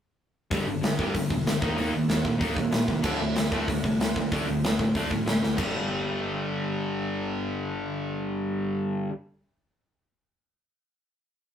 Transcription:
0.51 G1 G2 D3 G3, kick, open hi-hat
0.67 G1 G2 D3
0.82 G1 G2 D3, snare, open hi-hat
0.98 G1 G2 D3 G3, kick
1.14 G1 G2 D3, kick, open hi-hat
1.30 E1 G2 D3, kick
1.45 G1 G2 D3, snare, open hi-hat
1.61 D#2 D#3 A#3 D#4, kick
1.77 D#2 D#3 A#3 D#4, open hi-hat
1.93 D#2 D#3 A#3
2.08 D#2 D#3 A#3, snare, open hi-hat
2.25 A#2 D#3 A#3, kick
2.39 D#2 D#3 A#3 D#4, kick, open hi-hat
2.55 A#2 D#3 A#3, kick
2.71 A#2 D#3 A#3, snare, open hi-hat
2.88 C2 D#3 A#3, kick
3.02 D2 D3 A3 D4, kick, crash
3.19 D2 D3 A3
3.35 D2 D3 A3, snare, open hi-hat
3.51 D2 D3 A3 D4, kick
3.68 D2 D3 A3, kick, open hi-hat
3.84 C2 D3 A3, kick
3.99 D2 D3 A3, snare, open hi-hat
4.16 D2 D3 A3, kick
4.32 D2 D3 A3 D4, kick, open hi-hat
4.47 D2 D3 A3
4.62 D2 D3 A3, snare, open hi-hat
4.79 A2 D3 A3, kick
4.94 D2 D3 A3 D4, kick, open hi-hat
5.11 A2 D3 A3, kick
5.26 A2 D3 A3, snare, open hi-hat
5.42 D2 D3 A3, snare
5.56 G1 G2 D3, kick, crash
5.61 G3

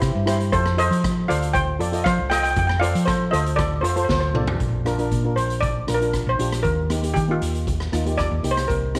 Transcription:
Already playing: E4 G4 C5
0.02 C3, kick, cross-stick, closed hi-hat
0.15 G2
0.26 E4 G4 C5, cross-stick, closed hi-hat
0.40 closed hi-hat
0.52 F2 A4 C5, kick, closed hi-hat
0.66 cross-stick
0.77 F4 A4 C5 D#5, closed hi-hat
0.91 F3, closed hi-hat
1.04 kick, cross-stick, closed hi-hat
1.28 D2 F4 A4 C5 D5 F5, closed hi-hat
1.42 closed hi-hat
1.54 C5 G5, kick, closed hi-hat
1.79 F2 F4 A4 D5, closed hi-hat
1.92 F4 A4 D#5, closed hi-hat
2.04 F3 C5 F5, kick, cross-stick, closed hi-hat
2.19 C2
2.30 F4 A4 D#5 G5, cross-stick, closed hi-hat
2.36 G5
2.43 G5, closed hi-hat
2.51 G5
2.56 F2 G5, kick, closed hi-hat
2.67 G5, cross-stick
2.80 F4 A4 C5 D5 F5, closed hi-hat
2.95 F3, closed hi-hat
3.05 A4 C5, kick, cross-stick, closed hi-hat
3.31 D2 F4 A4 C5 D#5, closed hi-hat
3.46 closed hi-hat
3.56 A4 D5, kick, cross-stick, closed hi-hat
3.81 F2 F4 A4 C5, closed hi-hat
3.89 C5
3.96 F4 A4 C5, closed hi-hat
4.05 C5
4.09 D2 C5, kick, snare
4.20 C5
4.34 C2 F4 A4 D5, mid tom
4.47 floor tom
4.60 A#1, kick, closed hi-hat
4.85 D4 F4 A#4, cross-stick, closed hi-hat
4.98 D4 F4 A#4, closed hi-hat
5.11 A#2, kick, closed hi-hat
5.24 D4 F4 A#4
5.36 A#1 C5, closed hi-hat
5.50 closed hi-hat
5.61 D5, kick, closed hi-hat
5.87 A#1 D4 F4 A#4, cross-stick, closed hi-hat
5.94 A#4
6.01 D4 F4 A#4, closed hi-hat
6.13 kick, cross-stick, closed hi-hat
6.27 A#1 C5
6.39 A#1 D4 F4 G4, closed hi-hat
6.52 cross-stick, closed hi-hat
6.63 D#2 A#4, kick, closed hi-hat
6.90 A#3 D#4 G4, cross-stick, closed hi-hat
7.03 A#3 D#4 G4, closed hi-hat
7.14 D#3 G4, kick, closed hi-hat
7.28 A#3 D#4 F4 G4
7.41 D#2, closed hi-hat
7.55 closed hi-hat
7.67 kick, closed hi-hat
7.80 cross-stick
7.92 D#2 A#3 D#4 F4, cross-stick, closed hi-hat
8.06 A#3 D#4 G4, closed hi-hat
8.18 D5, kick, cross-stick, closed hi-hat
8.31 D#2
8.43 C2 A#3 D#4 G4, closed hi-hat
8.51 C5
8.57 cross-stick, closed hi-hat
8.68 C2 A#4, kick, closed hi-hat
8.95 C4 D#4 G4, cross-stick, closed hi-hat

